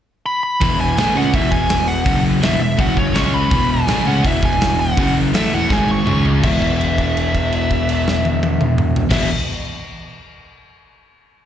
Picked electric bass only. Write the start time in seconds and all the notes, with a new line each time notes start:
0.62 E1
0.98 A1
1.16 C#2
1.34 E1
2.06 F#1
2.42 E1
2.61 E1
2.79 F#1
3.15 C#2
3.51 E1
3.87 A1
4.06 C#2
4.24 E1
4.97 F#1
5.34 A1
5.53 E1
5.70 G#1
6.08 C#2
6.44 E1
9.11 E1